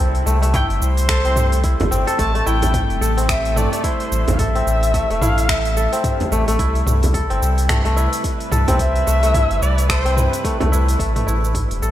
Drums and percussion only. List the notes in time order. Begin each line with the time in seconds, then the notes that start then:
0.15 open hi-hat
0.27 cabasa
0.43 open hi-hat, cabasa
0.54 kick, mid tom, open hi-hat, cabasa
0.70 open hi-hat
0.82 cabasa
0.97 open hi-hat, cabasa
1.09 finger snap, kick, open hi-hat, cabasa
1.25 open hi-hat
1.36 mid tom, cabasa
1.52 open hi-hat, cabasa
1.64 kick, open hi-hat, cabasa
1.80 open hi-hat, frame drum
1.92 cabasa
2.08 open hi-hat, cabasa
2.19 kick, open hi-hat, cabasa
2.35 open hi-hat
2.47 cabasa
2.62 open hi-hat, frame drum, cabasa
2.74 kick, mid tom, open hi-hat, cabasa
2.90 open hi-hat
3.02 cabasa
3.18 open hi-hat, cabasa
3.29 finger snap, kick, open hi-hat, cabasa
3.45 open hi-hat
3.56 mid tom, cabasa
3.73 open hi-hat, cabasa
3.84 kick, open hi-hat, cabasa
4.00 open hi-hat
4.12 cabasa
4.28 open hi-hat, frame drum, cabasa
4.39 kick, mid tom, open hi-hat, cabasa
4.55 open hi-hat
4.67 cabasa
4.83 open hi-hat, cabasa
4.94 kick, open hi-hat, cabasa
5.10 open hi-hat
5.22 mid tom, cabasa
5.38 open hi-hat, cabasa
5.49 finger snap, kick, open hi-hat, cabasa
5.65 open hi-hat
5.77 cabasa
5.93 open hi-hat, cabasa
6.04 kick, mid tom, open hi-hat, cabasa
6.20 open hi-hat, frame drum
6.32 cabasa
6.48 open hi-hat, cabasa
6.59 kick, open hi-hat, cabasa
6.75 open hi-hat
6.87 mid tom, cabasa
7.03 open hi-hat, frame drum, cabasa
7.14 kick, open hi-hat, cabasa
7.30 open hi-hat
7.42 cabasa
7.58 open hi-hat, cabasa
7.69 finger snap, kick, mid tom, open hi-hat, cabasa
7.85 open hi-hat
7.97 cabasa
8.13 open hi-hat, cabasa
8.24 kick, open hi-hat, cabasa
8.40 open hi-hat
8.52 mid tom, cabasa
8.68 open hi-hat, frame drum, cabasa
8.79 kick, open hi-hat, cabasa
8.96 open hi-hat
9.07 cabasa
9.23 open hi-hat, cabasa
9.34 kick, mid tom, open hi-hat, cabasa
9.51 open hi-hat
9.62 cabasa
9.78 open hi-hat, cabasa
9.90 finger snap, kick, open hi-hat, cabasa
10.06 open hi-hat
10.17 mid tom, cabasa
10.33 open hi-hat, cabasa
10.45 kick, open hi-hat, cabasa
10.61 open hi-hat, frame drum
10.73 cabasa
10.89 open hi-hat, cabasa
10.99 kick, open hi-hat, cabasa
11.16 mid tom, open hi-hat
11.28 cabasa
11.44 cabasa
11.55 kick, mid tom, open hi-hat, cabasa
11.71 open hi-hat
11.83 cabasa